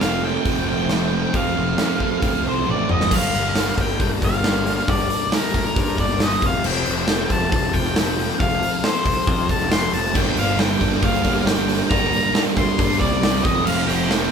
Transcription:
Already playing: F1 F2
0.00 C3 F3 A3 C4 F5, snare, open hi-hat
0.22 F3 A3 C4 G5
0.44 F1 F2 C3 F3 A3 C4, kick, open hi-hat
0.67 F1 F3 A3 C4 G5
0.88 F2 C3 F3 A3 C4, snare, open hi-hat
1.11 C3 F3 A3 C4
1.32 F2 C3 F3 A3 C4 F5, kick, open hi-hat
1.55 F1 F3 A3 C4
1.76 C3 F3 A3 C4, snare, open hi-hat
1.99 F3 A3 C4, kick
2.20 D2 F2 C3 F3 A3 C4, kick, open hi-hat
2.43 C2 F3 A3 C4
2.49 C5
2.66 A1 F2 C3 F3 A3 C4, high tom
2.71 D5
2.87 G1 C3 F3 A3 C4, mid tom
2.91 D#5
3.01 snare
3.11 G1 G2 D3 G3 A#3 D4 G4 A#4 D5 A#5, kick, crash
3.15 F5
3.33 G1 G3 A#3 D4, open hi-hat
3.55 D3 G3 A#3 D4, snare, open hi-hat
3.77 G1 G2 D3 G3 A#3 D4, kick, open hi-hat
3.81 G5
3.99 G1 D3 G3 A#3 D4 G5, kick, open hi-hat
4.20 G1 G2 D3 G3 A#3 D4, kick, open hi-hat
4.24 F5
4.43 D3 G3 A#3 D4, snare, open hi-hat
4.65 G3 A#3 D4, open hi-hat
4.87 G1 G2 D3 G3 A#3 D4 D5, kick, open hi-hat
5.08 G3 A#3 D4, open hi-hat
5.31 D3 G3 A#3 D4 A#4, snare, open hi-hat
5.53 D2 G2 D3 G3 A#3 D4, kick, open hi-hat
5.75 G2 D3 G3 A#3 D4, kick, open hi-hat
5.97 G1 G2 D3 G3 A#3 D4 D5, kick, open hi-hat
6.10 snare
6.19 D3 G3 A#3 D4, snare, open hi-hat
6.23 D#5
6.40 F1 F2 C3 F3 A3 C4 F4 A4 C5 A5, kick, open hi-hat
6.46 F5
6.62 F1 F2 C3 F3 A3 C4, crash
6.67 G5
6.84 F1 F3 A3 C4, open hi-hat
7.06 C3 F3 A3 C4, snare, open hi-hat
7.28 F1 F2 C3 F3 A3 C4 A5, kick, open hi-hat
7.51 F1 C3 F3 A3 C4 A5, kick, open hi-hat
7.72 F1 F2 C3 F3 A3 C4 G5, kick, open hi-hat
7.85 snare
7.94 C3 F3 A3 C4, snare, open hi-hat
8.16 F3 A3 C4, open hi-hat
8.37 F1 F2 C3 F3 A3 C4 F5, kick, open hi-hat
8.60 F3 A3 C4, open hi-hat
8.82 C3 F3 A3 C4 C5, snare, open hi-hat
9.04 C2 F2 C3 F3 A3 C4, kick, open hi-hat
9.26 F2 C3 F3 A3 C4, kick, open hi-hat
9.49 F1 F2 C3 F3 A3 C4 A5, kick, open hi-hat
9.61 snare
9.70 C3 F3 A3 C4 C6, snare, open hi-hat
9.93 F1 F3 A3 C4 A5, open hi-hat
10.14 G1 G2 D3 G3 A#3 D4 G4 A#4 D5 G5 A#5, kick, crash
10.35 G1 G3 A#3 D4 F5, open hi-hat
10.56 G2 D3 G3 A#3 G5, snare, open hi-hat
10.61 D4
10.79 G1 G2 D3 G3 A#3 D4, kick, open hi-hat
11.01 G1 D3 G3 A#3 D4 F5, kick, open hi-hat
11.23 G1 G2 D3 G3 A#3 D4, kick, open hi-hat
11.45 D3 G3 A#3 D4 G5, snare, open hi-hat
11.68 G3 A#3 D4, open hi-hat
11.89 G1 G2 D3 G3 A#3 D4 A#5, kick, open hi-hat
12.12 G3 A#3 D4, open hi-hat
12.31 G2 D3 G3 A#5
12.35 A#3 D4, snare, open hi-hat
12.55 D2 G2 D3 G3 A#3 D4 C6, kick, open hi-hat
12.78 G2 D3 G3 A#3 D4, kick, open hi-hat
13.00 C2 G2 D3 G3 A#3 D4 D5, kick, open hi-hat
13.12 snare
13.21 D3 G3 A#3 D4, snare, open hi-hat
13.43 F1 F2 C3 F3 A3 C4 F4 A4 C5 D#5 A5, kick, open hi-hat
13.65 F1 F2 C3 F3 A3 C4 F5, crash
13.87 F1 F3 A3 C4 G5, open hi-hat
14.07 F2 C3 F3 A3, snare, open hi-hat
14.12 C4

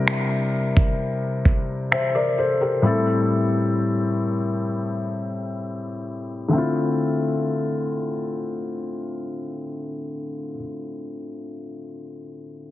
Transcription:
Already playing: C3 G3 D4 E4 A#4
0.08 finger snap
0.77 kick
1.45 kick
1.92 C5 E5, finger snap
2.15 A#4 D5
2.38 A4 C5
2.61 G4 A#4
2.82 A2 G3 C4 E4
2.87 A4
6.48 D3 A3
6.53 C4 E4
6.58 F4

